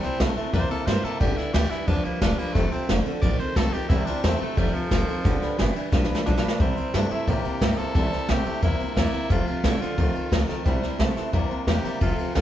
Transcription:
Already playing: C3 G3
0.03 G3 C4 E4 C5, muted upright bass stroke, snare, ride
0.19 C2 C3 G3 A3 C4 E4 C5, snare, ride
0.36 C3 G3 A3 C4 E4 C5, muted upright bass stroke, ride
0.53 E2 C3 E3 G3 A#3 C4 E4 C5, kick, ride
0.70 G3 C4 E4 A4 C5, muted upright bass stroke, ride
0.86 G2 C3 G3 A#3 C4 E4 C5, snare, ride
1.03 C3 G3 A#3 C4 E4 A4 C5, muted upright bass stroke, snare, ride
1.20 G1 G2 D3 G3 D4 G4 B4, kick, ride
1.37 D4 E4 G4 B4, muted upright bass stroke, snare, ride
1.53 D2 G2 E3 G3 D4 G4 B4, snare, ride
1.70 G2 E3 D4 E4 G4 B4, muted upright bass stroke, snare, ride
1.87 E2 G2 F3 G3 D4 G4 B4, kick, ride
2.04 A#3 D4 G4 B4, muted upright bass stroke, ride
2.21 E1 G2 F3 G3 D4 G4 B4, kick, snare, ride
2.38 G2 F3 A#3 D4 G4 B4, muted upright bass stroke, ride
2.54 F1 F2 C3 F3 A3 C4 F4 A4, kick, snare, ride
2.71 C4 F4 A4, muted upright bass stroke, ride
2.89 F1 F2 D3 A3 C4 F4 A4, snare, ride
3.05 F2 D3 C4 F4 A4, muted upright bass stroke, ride
3.21 A1 F2 D#3 F3 A3 C4 F4 A4 D5, kick, ride
3.39 C4 F4 A4 C5, muted upright bass stroke, ride
3.56 C2 F2 D#3 A3 C4 F4 A4, kick, snare, ride
3.73 F2 D#3 C4 F4 G4 A4, muted upright bass stroke, ride
3.89 C2 C3 E3 G3 C4 E4 C5, kick, snare, ride
4.06 G3 C4 D4 E4 C5, muted upright bass stroke, snare, ride
4.23 E2 C3 G3 A3 C4 E4 C5, snare, ride
4.40 C3 G3 A3 C4 E4 C5, muted upright bass stroke, ride
4.57 F1 F2 C3 F3 G3 A3 C4 F4 A4, kick, ride
4.73 F3 C4 F4 A4, muted upright bass stroke, ride
4.91 F#1 F2 D#3 A3 C4 F4 A4, kick, snare, ride
5.07 F2 D#3 C4 F4 A4, muted upright bass stroke, ride
5.24 G1 G2 D3 G3 D4 G4 B4, kick, snare, ride
5.42 D4 G4 B4, muted upright bass stroke, snare, ride
5.58 G1 G2 E3 G3 D4 G4 B4, snare, ride
5.75 G2 E3 D4 G4 B4, muted upright bass stroke, ride
5.92 B1 G2 F3 G3 D4 G4 B4, kick, snare
6.04 snare
6.09 D4 G4 B4, muted upright bass stroke
6.15 snare
6.25 B1 G2 F3 G3 D4 G4 B4, snare
6.37 snare
6.42 G2 F3 D4 G4 B4
6.48 snare
6.60 C2 C3 E3 G3 C4 E4 C5, kick, ride
6.77 G3 C4 E4 C5, muted upright bass stroke, ride
6.94 G2 C3 G3 A3 C4 D4 E4 C5, snare, ride
7.10 C3 G3 A3 C4 E4 C5, muted upright bass stroke, ride
7.27 A2 C3 E3 G3 A#3 C4 E4 G4 C5, kick, ride
7.44 G3 C4 E4 C5, muted upright bass stroke, ride
7.61 G2 C3 G3 A#3 C4 E4 C5, kick, snare, ride
7.78 C3 G3 A#3 C4 E4 A4 C5, muted upright bass stroke, ride
7.95 C2 C3 E3 G3 C4 E4 C5, kick, ride
8.12 G3 C4 E4 C5, muted upright bass stroke, snare, ride
8.29 C2 C3 G3 A3 C4 E4 G4 C5, snare, ride
8.45 C3 G3 A3 C4 E4 C5, muted upright bass stroke, ride
8.62 E2 C3 E3 G3 A#3 C4 E4 C5, kick, ride
8.80 G3 C4 E4 C5, muted upright bass stroke, ride
8.96 E2 C3 G3 A#3 C4 E4, kick, snare, ride
9.13 C3 G3 A#3 C4 E4 C5, muted upright bass stroke, ride
9.30 F1 F2 C3 F3 A3 C4 F4 A4, kick, snare, ride
9.47 C4 F4 A4, muted upright bass stroke, ride
9.63 C2 F2 D3 A3 C4 E4 F4 A4, snare, ride
9.79 F2 D3 C4 F4 A4, muted upright bass stroke, snare, ride
9.98 D2 F2 D#3 F3 A3 C4 F4 A4, kick, ride
10.14 C4 F4 A4, ride
10.30 D2 F2 D#3 A3 C4 F4 A4, kick, snare, ride
10.47 F2 D#3 C4 F4 A4, muted upright bass stroke, snare, ride
10.65 C2 C3 E3 G3 C4 E4 C5, kick, snare, ride
10.82 G3 C4 E4 C5, muted upright bass stroke, snare, ride
10.98 C2 C3 G3 A3 C4 E4 C5, snare, ride
11.16 C3 G3 A3 C4 E4 C5, muted upright bass stroke, snare, ride
11.33 E2 C3 E3 G3 A#3 C4 E4 C5, kick, ride
11.49 G3 C4 E4 C5, muted upright bass stroke, ride
11.67 E2 C3 G3 A#3 C4 E4 G4 C5, snare, ride
11.84 C3 G3 A#3 C4 E4 C5, muted upright bass stroke, snare, ride
12.00 F1 F2 C3 F3 A3 C4 F4 A4, kick, ride
12.18 C4 F4 A4, muted upright bass stroke, ride
12.35 C2 F2 D3 A3 C4 F4 A4, snare, ride

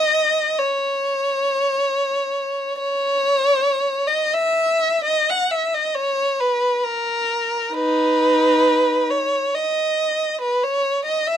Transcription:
Already playing: D#5
0.58 C#5
2.78 C#5
4.07 D#5
4.33 E5
5.05 D#5
5.30 F#5
5.51 E5
5.74 D#5
5.95 C#5
6.40 B4
6.85 A#4
7.74 D#4 B4
9.11 C#5
9.55 D#5
10.41 B4
10.63 C#5
11.05 D#5
11.27 E5

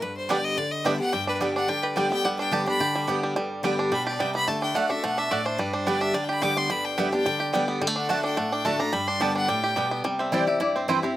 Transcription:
0.02 G2 B4
0.17 C5
0.29 D3 G3 B3 D4 G4 D5 G5
0.44 D#5
0.58 D3 D5
0.72 D#5
0.84 D3 G3 B3 D4 G4 D5 E5 G5
1.00 B3 G4 F#5
1.13 G2 G3 G5
1.27 D4 B4
1.40 D3 G3 B3 G4 D5 G5
1.56 D4 F#5
1.68 D3 G3 G5
1.83 G4 B4
1.96 D3 G3 B3 G4 D5 G5
2.10 B3 G4 G5
2.25 G2 G3 F#5
2.39 D4 G5
2.51 D3 G3 B3 G4 D5 G5 A5
2.66 B3 D4 G4 B5
2.80 D3 G4
2.95 G3
3.07 D3 G3 B3 G4 D5 G5
3.23 G3
3.36 G2 G3
3.63 D3 G3 B3 G4 D5 G5
3.79 D4
3.92 B2 G3 B5
4.07 G4 D5
4.19 C3 G3 B3 G4 D5 G5
4.35 B3 B5
4.48 D3 A3 A5
4.62 D4 G5
4.75 D3 A3 D4 F#4 D5 F#5
4.90 D4 F#4 E5
5.03 B2 A3 F#5
5.18 D4 E5
5.31 A2 A3 F#4 D5 F#5
5.45 D4 C5
5.58 G2 G3 B4
5.73 D4 C5
5.86 D3 G3 B3 G4 D5 G5
6.01 D4 E5
6.14 D3 G3 D5
6.23 G5
6.29 G4 B5
6.42 D3 G3 B3 G4 D5 G5 D6
6.57 B3 C6
6.70 G2 G3 B5
6.85 G5
6.98 D3 G3 B3 G4 D5 E5 G5
7.12 B3 D4 G4 G5
7.26 D3 G3
7.40 G4
7.53 D3 G3 B3 G4 D5 G5
7.68 B3
7.81 D3 G3
7.87 A3
7.96 D4 F#5
8.09 D3 A3 D4 F#4 D5 F#5 A5
8.24 D4 G5
8.37 A2 A3 F#5
8.52 D4 G5
8.65 D3 A3 D4 F#4 D5 F#5 A5
8.79 D4 F#4 A#5
8.93 G2 G3 B5
9.08 D4 C6
9.20 D3 G3 B3 G4 D5 G5 A5
9.36 D4 F#5
9.48 A2 G3 G5
9.64 G4
9.76 B2 G3 B3 G4 D5 G5
9.91 B3
10.04 C3 G3 G5
10.19 C4 E5
10.32 E3 G3 C4 E4 C5 D5 G5
10.47 C4 E4 G4 E5
10.60 G2 E4 D5
10.76 C4 C5
10.88 E3 G3 C4 E4 B4 C5 G5
11.03 C4 E4 G4

